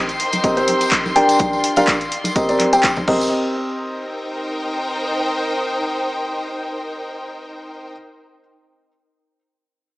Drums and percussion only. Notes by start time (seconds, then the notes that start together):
0.09 closed hi-hat, tambourine
0.20 open hi-hat
0.32 closed hi-hat, tambourine, high conga
0.44 kick, closed hi-hat, tambourine
0.57 closed hi-hat, tambourine
0.68 open hi-hat, high conga
0.81 closed hi-hat, tambourine
0.92 kick, clap, closed hi-hat
1.06 tambourine, high conga
1.16 open hi-hat
1.29 closed hi-hat, tambourine
1.39 kick, closed hi-hat, tambourine, high conga
1.53 tambourine
1.64 open hi-hat
1.76 closed hi-hat, tambourine, high conga
1.87 kick, clap, closed hi-hat, tambourine
2.01 closed hi-hat, tambourine
2.12 open hi-hat
2.24 closed hi-hat, tambourine, high conga
2.36 kick, closed hi-hat, tambourine
2.49 closed hi-hat, tambourine
2.59 clap, open hi-hat, high conga
2.73 closed hi-hat, tambourine
2.83 kick, clap, closed hi-hat, tambourine
2.96 kick, tambourine, high conga
3.08 kick, crash
3.21 tambourine